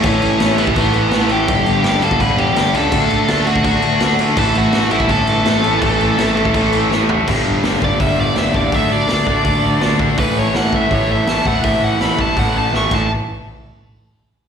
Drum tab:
CC |x-x-x-x-x-x-x-x-|x-x-x-x-x-x-x-x-|x-x-x-x-x-x-x-x-|x-x-x-x-x-x-x-x-|
HH |----------------|----------------|----------------|----------------|
SD |----o-------o---|----o-------o---|----o-------o---|----o-------o---|
FT |----------------|----------------|----------------|----------------|
BD |o------oo-------|o------oo-------|o------oo-------|o------oo-------|

CC |x-x-x-x-x-x-----|x---------------|----------------|----------------|
HH |----------------|----o---o---o---|o---o---o---o---|o---o---o---o---|
SD |----o-------o---|----o-------o---|----o-------o---|----o-------o---|
FT |--------------o-|----------------|----------------|----------------|
BD |o------oo-------|o-----o-o-----o-|o-----o-o-----o-|o-----o-o-----o-|

CC |--------------x-|----------------|
HH |o---o---o-------|----------------|
SD |----o-------o---|----------------|
FT |----------------|----------------|
BD |o-----o-o-----o-|----------------|